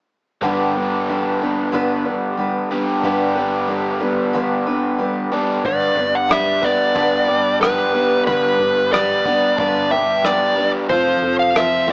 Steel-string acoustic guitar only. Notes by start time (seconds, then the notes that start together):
0.43 G2 D3 G3 B3 D4 B4
0.75 G3 B3 D4 B4
1.08 G3 B3 D4 B4
1.41 G3 B3 D4 B4
1.72 G2 D3 G3 B3 D4 B4
2.05 G3 B3 D4 B4
2.37 G3 B3 D4 B4
2.70 G3 B3 D4 B4
3.03 G2 D3 G3 B3 D4 B4
3.35 G3 B3 D4 B4
3.67 G3 B3 D4 B4
4.00 G3 B3 D4 B4
4.33 G2 D3 G3 B3 D4 B4
4.66 G3 B3 D4 B4
4.99 G3 B3 D4 B4
5.32 G3 B3 D4 B4
5.64 G2 D3 G3 B3 D4 B4
5.97 G3 B3 D4 B4
6.29 G3 B3 D4 B4
6.61 G3 B3 D4 B4
6.95 G2 D3 G3 B3 D4 B4
7.28 G3 B3 D4 B4
7.60 G3 B3 D4 B4
7.93 G3 B3 D4 B4
8.26 G2 D3 G3 B3 D4 B4
8.59 G3 B3 D4 B4
8.92 G3 B3 D4 B4
9.25 G3 B3 D4 B4
9.58 G2 D3 G3 B3 D4 B4
9.91 G3 B3 D4 B4
10.23 G3 B3 D4 B4
10.57 G3 B3 D4 B4
10.90 F3 C4 F4 A4
11.22 C4 F4 A4
11.54 F3 C4 F4 A4
11.87 F4 A4